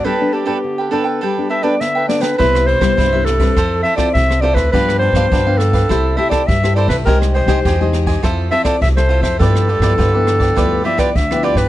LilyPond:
<<
  \new Staff \with { instrumentName = "Clarinet" } { \time 4/4 \key g \major \tempo 4 = 103 b'8 g'4 a'8 g'8 e''16 d''16 e''8 d''16 b'16 | \key c \major b'8 c''4 a'4 e''16 d''16 e''8 d''16 b'16 | b'8 c''4 a'4 e''16 d''16 e''8 d''16 b'16 | bes'8 c''4 r4 e''16 d''16 e''16 c''8 c''16 |
a'2~ a'8 e''16 d''16 e''8 d''16 b'16 | }
  \new Staff \with { instrumentName = "Cavaquinho" } { \time 4/4 \key g \major <d' a' b' g''>8 <d' a' b' g''>16 <d' a' b' g''>16 r16 <a' b' g''>16 <d' a' b' g''>16 <a' b' g''>16 <d' a' b' g''>8 <d' a' b' g''>16 <d' a' b' g''>16 r16 <a' b' g''>8 <a' b' g''>16 | \key c \major <e' b' c'' e''>8 <e' b' c'' e''>16 <e' b' c'' e''>16 <e' b' c'' e''>16 <b' c'' e''>8 <b' c'' e''>16 <f' a' c'' e''>8 <f' a' c'' e''>16 <f' a' c'' e''>16 r16 <a' c'' e''>16 <f' a' c'' e''>16 <a' c'' e''>16 | <d' g' b' f''>8 <d' g' b' f''>16 <d' g' b' f''>16 <d' g' b' f''>16 <g' b' f''>8 <g' b' f''>16 <e' a' c'' e''>8 <e' a' c'' e''>16 <e' a' c'' e''>16 r16 <a' c'' e''>16 <e' a' c'' e''>16 <a' c'' e''>16 | <g' c'' ees'' aes''>8 <g' c'' ees'' aes''>16 <g' c'' ees'' aes''>16 <g' c'' ees'' aes''>16 <c'' ees'' aes''>8 <c'' ees'' aes''>16 <f' a' c'' e''>8 <f' a' c'' e''>16 <f' a' c'' e''>16 r16 <a' c'' e''>16 <f' a' c'' e''>16 <a' c'' e''>16 |
<f' g' b' d''>8 <f' g' b' d''>16 <f' g' b' d''>16 <f' g' b' d''>16 <g' b' d''>8 <g' b' d''>16 <f' g' b' d''>8 <f' g' b' d''>16 <f' g' b' d''>16 r16 <g' b' d''>16 <f' g' b' d''>16 <g' b' d''>16 | }
  \new Staff \with { instrumentName = "Nylon-string guitar" } { \time 4/4 \key g \major << { <b d' a'>16 <b d' a'>8 <b d' a'>8. <b d' a'>8 r16 <b d' a'>8 <b d' a'>8. <b d' a'>8 | \key c \major <g b e'>8. <g b e'>8 <g b e'>8 <c' e' a'>4 <c' e' a'>8. <c' e' a'>8 | <f b d'>8. <f b d'>8 <f b d'>8. <a e' g'>16 r16 <a e' g'>8. <a e' g'>8. | <aes ees' g'>8. <aes ees' g'>8 <aes ees' g'>8. <c' e' a'>8 <c' e' a'>8. <c' e' a'>8. |
<f b e'>8 r16 <f b e'>8 <f b e'>8. <f b e'>8 <f b e'>8 r16 <f b e'>8. | } \\ { g4 d4 g4 d4 | c4 g,4 f4 c4 | g,4 d4 c4 g,4 | c4 c4 f4 c4 |
g,4 d4 g,4 d4 | } >> }
  \new Staff \with { instrumentName = "Upright bass" } { \clef bass \time 4/4 \key g \major r1 | \key c \major c,8. c,16 c,4 f,8 r8 c,8. d,16 | g,8. g,16 g,4 c,8 r8 g,8. c,16 | c,8. c,16 e,4 f,8 r8 c,8. f,16 |
g,8. g,16 g,4 d,8 r8 d,8. g,16 | }
  \new DrumStaff \with { instrumentName = "Drums" } \drummode { \time 4/4 r4 r4 r4 sn8 sn16 sn16 | <bd cymr>16 ss16 cymr16 <bd cymr ss>16 <bd cymr>8 <cymr ss>16 <bd cymr>16 <bd cymr ss>8 cymr16 <bd cymr ss>16 <bd cymr>16 ss16 cymr16 <bd cymr ss>16 | <bd cymr>16 ss16 cymr16 <bd cymr ss>16 <bd cymr>8 <cymr ss>16 <bd cymr>16 <bd cymr ss>8 cymr16 <bd cymr ss>16 <bd cymr>16 ss16 cymr16 <bd cymr ss>16 | <bd cymr>16 ss16 cymr16 <bd cymr ss>16 <bd cymr>8 <cymr ss>16 <bd cymr>16 <bd cymr ss>8 cymr16 <bd cymr ss>16 <bd cymr>16 ss16 cymr16 <bd cymr ss>16 |
<bd cymr>16 ss16 cymr16 <bd cymr ss>16 <bd cymr>8 <cymr ss>16 <bd cymr>16 <bd cymr ss>8 cymr16 <bd cymr ss>16 <bd cymr>16 ss16 cymr16 <bd cymr ss>16 | }
>>